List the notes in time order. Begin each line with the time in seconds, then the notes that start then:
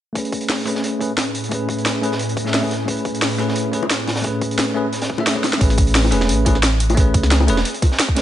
0.13 A2 A3 C#4 E4 G#4 B4, kick, closed hi-hat
0.18 B4
0.25 closed hi-hat
0.32 kick, closed hi-hat
0.41 closed hi-hat
0.50 snare, open hi-hat
0.66 A3 C#4 G#4 B4, snare, closed hi-hat
0.75 snare
0.84 closed hi-hat
1.00 A3 C#4 G#4 B4, kick, closed hi-hat
1.18 snare, closed hi-hat
1.35 closed hi-hat
1.44 closed hi-hat
1.49 A3 C#4 G#4, kick, closed hi-hat
1.55 B4
1.69 kick, closed hi-hat
1.78 closed hi-hat
1.86 snare, closed hi-hat
2.02 A3 C#4 G#4 B4, closed hi-hat
2.12 snare
2.19 closed hi-hat
2.29 closed hi-hat
2.37 kick, closed hi-hat
2.45 A3 C#4 G#4 E5, snare
2.54 snare, open hi-hat
2.62 A3 C#4 G#4 B4, kick
2.71 snare, closed hi-hat
2.85 A3 C#4 G#4, kick, closed hi-hat
2.91 B4
2.97 closed hi-hat
3.05 kick, closed hi-hat
3.15 closed hi-hat
3.22 snare, open hi-hat
3.38 A3 C#4 G#4 B4, snare, closed hi-hat
3.49 snare
3.56 closed hi-hat
3.72 A3 C#4 G#4 B4, kick, closed hi-hat
3.83 high bongo
3.90 snare, closed hi-hat
4.07 snare, open hi-hat, high bongo
4.16 snare, open hi-hat
4.22 A3 C#4 G#4, kick, closed hi-hat
4.27 B4
4.41 kick, closed hi-hat
4.51 closed hi-hat
4.58 snare, closed hi-hat
4.74 A3 C#4 G#4 B4
4.93 snare, closed hi-hat
5.02 snare, closed hi-hat
5.10 kick
5.18 A3 C#4 G#4 E5, high bongo
5.27 snare, closed hi-hat
5.35 A3 C#4 G#4 B4, kick
5.44 snare, closed hi-hat, high bongo
5.53 snare
5.58 A1 A3 C#4 G#4, kick, closed hi-hat
5.63 B4
5.70 snare, closed hi-hat
5.78 kick, closed hi-hat
5.87 closed hi-hat
5.95 snare, closed hi-hat, open hi-hat
6.04 high bongo
6.11 E1 A3 C#4 G#4 B4, snare, closed hi-hat
6.21 snare
6.29 A1, closed hi-hat
6.45 A3 C#4 G#4 B4, kick, closed hi-hat, high bongo
6.55 snare
6.63 snare, closed hi-hat
6.80 closed hi-hat
6.90 closed hi-hat, high bongo
6.95 A3 C#4 G#4, kick, closed hi-hat
7.00 B4
7.14 C#2, kick, closed hi-hat
7.23 snare, closed hi-hat
7.31 snare, closed hi-hat
7.40 high bongo
7.47 E1 A3 C#4 G#4 B4, closed hi-hat
7.57 snare
7.65 closed hi-hat
7.74 closed hi-hat
7.82 kick, closed hi-hat, high bongo
7.92 snare
7.99 snare, closed hi-hat
8.08 kick
8.15 A3 C#4 G#4 B4, snare, closed hi-hat, open hi-hat